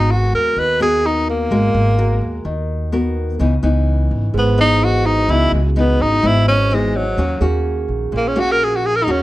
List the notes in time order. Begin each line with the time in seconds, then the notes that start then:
Already playing: G#1 G#3 B3 D#4 F#4 A#4
0.11 F#4
0.33 D#2 A#4
0.56 D#2 D#3 B4
0.80 B3 F#4 G#4 A#4
1.06 D#4
1.30 A#3
1.51 G#1 G#3 F#4 A#4
1.74 G#1
1.98 F#4 A#4
2.21 D#2
2.45 D#2 D#3
2.92 B3 F#4 A#4
3.39 C#2 C#3 E3 B3 D#4
3.63 C#2 E3 B3 D#4
4.11 G#1
4.34 G#1 G#2 G#4
4.38 B3
4.58 E3 B3 D#4
4.85 F#4
5.05 D#4 F#4
5.28 C#2 C#3 E3 B3 D#4 E4
5.52 C#2 G#3
5.76 E3 B3 D#4
5.99 G#1 D#4
6.22 G#1 G#2 E3 B3 D#4
6.27 E4
6.48 C#4
6.70 E3 B3 D#4
6.75 G#3
6.96 F#3
7.17 D#2 D#3 A#3 C#4 F#4
7.41 D#2 A#3 C#4 F#4 G#4
7.88 A#1
8.12 A#1 A#2
8.17 A#3
8.28 C#4
8.36 A#3 C#4 F#4
8.40 F#4
8.52 A#4
8.64 G#4
8.76 F#4
8.86 G#4
8.96 A#4
9.04 D#2 D#3 A#3 D#4
9.08 C#4 F#4